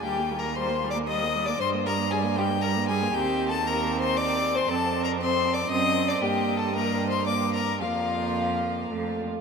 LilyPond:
<<
  \new Staff \with { instrumentName = "Violin" } { \time 3/4 \key aes \lydian \tempo 4 = 116 \tuplet 3/2 { g''4 bes''8 c'''4 d'''8 } ees'''8. d'''16 | c'''8 bes''8 aes''8 g''8 bes''8 aes''8 | \key bes \major \tuplet 3/2 { g''4 a''8 bes''4 c'''8 } d'''8. c'''16 | \tuplet 3/2 { a''4 bes''8 c'''4 d'''8 } ees'''8. d'''16 |
\tuplet 3/2 { g''4 a''8 bes''4 c'''8 } d'''8 bes''8 | f''2~ f''8 r8 | }
  \new Staff \with { instrumentName = "Violin" } { \time 3/4 \key aes \lydian \tuplet 3/2 { g'4 bes'8 c''4 d''8 } ees''8. d''16 | c''8 bes'8 aes'8 g'8 bes'8 aes'8 | \key bes \major \tuplet 3/2 { g'4 a'8 bes'4 c''8 } d''8. c''16 | \tuplet 3/2 { a'4 bes'8 c''4 d''8 } ees''8. d''16 |
\tuplet 3/2 { g'4 a'8 bes'4 c''8 } d''8 bes'8 | f'2~ f'8 r8 | }
  \new Staff \with { instrumentName = "Viola" } { \time 3/4 \key aes \lydian g16 bes16 g16 bes16 g16 bes16 g16 bes16 g16 bes16 g16 bes16 | g16 bes16 g16 bes16 g16 bes16 g16 bes16 g16 bes16 g16 bes16 | \key bes \major c'4 c'2 | c'4 c'4 c'4 |
bes4 bes4 bes4 | bes2 a8 r8 | }
  \new Staff \with { instrumentName = "Cello" } { \clef bass \time 3/4 \key aes \lydian ees,2. | g,2. | \key bes \major ees,2. | f,2 fis,4 |
g,2. | f,2 f,8 r8 | }
>>